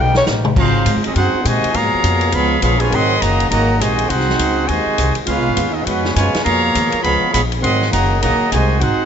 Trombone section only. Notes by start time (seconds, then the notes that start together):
0.56 F#3 C4 F4
1.02 F#3 C4 D#4
1.13 C4 D#4 F#4
1.43 C3 D#3 G#3
1.73 B2 F3 A#3
2.31 F3 G#3 B3
2.60 F3 G#3 B3
2.78 B2 F3 G#3
2.89 D#3 F#3 C4
3.18 D#3 F#3 A#3
3.49 D#3 F#3 A#3
3.79 C3 D#3 G#3
4.08 C4 D#4 F#4
4.66 C3 D#3 G#3
5.26 G#3 B3 F4
5.72 D#4
5.84 G#3 B3 F#4
6.12 B2 F3 G#3
6.43 B2 F3 A#3
7.02 F3 G#3 B3
7.31 F3 G#3 B3
7.60 D#3 F#3 C4
7.89 D#3 F#3 A#3
8.20 D#3 F#3 A#3
8.51 C3 D#3 G#3
8.79 C4 D#4 F#4